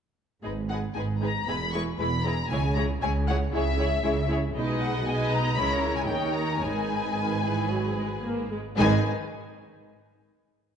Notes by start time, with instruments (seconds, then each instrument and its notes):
0.44 double bass section G#1, cello section G#2, viola section G#3 D#4, violin section G#4 B4
0.69 viola section G#3 D#4, violin section G#4 B4 F#5
0.95 double bass section G#1, cello section G#2, viola section G#3 D#4, violin section G#4 B4 G#5
1.22 viola section G#3 D#4, violin section G#4 B4 A#5
1.48 double bass section E1, cello section E2, viola section G#3 E4, violin section G#4 B4 B5
1.72 viola section G#3 E4, violin section G#4 B4 C#6
1.99 double bass section E1, cello section E2, viola section G#3 E4, violin section G#4 B4 B5
2.23 viola section G#3 E4, violin section G#4 B4 A#5
2.48 double bass section C#2, cello section C#3, viola section G#3 E4, violin section G#4 C#5 G#5
2.75 viola section G#3 E4, violin section G#4 C#5 A#5
3.02 double bass section C#2, cello section C#3, viola section G#3 E4, violin section G#4 C#5 G#5
3.28 viola section G#3 E4, violin section G#4 C#5 F#5
3.53 double bass section C#2, cello section C#3, viola section G#3 E4, violin section G#4 C#5 E5
3.78 viola section G#3 E4, violin section G#4 C#5
4.03 double bass section C#2, cello section C#3, viola section G#3 E4, violin section G#4 C#5
4.28 viola section G#3 E4, violin section G#4 C#5
4.55 double bass section B1, cello section B2, viola section G#3 D#4, violin section B4 D#5
4.80 violin section F#5
5.06 viola section G#3 D#4, violin section B4 D#5 G#5
5.31 violin section A#5
5.56 double bass section C#2, cello section C#3, viola section G#3 E4, violin section A#4 C#5 B5
5.71 violin section A#5
5.96 violin section G#5
6.07 cello section D#2, double bass section D#2, viola section D#3 D#4, violin section A#4 C#5 G5
6.33 violin section A#5
6.60 double bass section G#1, cello section G#2, viola section D#3 D#4, violin section G#4 B4 G#5
7.17 viola section D#3
7.44 viola section E3
7.71 viola section F#3
7.98 viola section G#3
8.24 viola section A#3
8.52 viola section G#3
8.78 double bass section G#1, cello section G#2, viola section D#3 D#4, violin section G#4 B4 G#5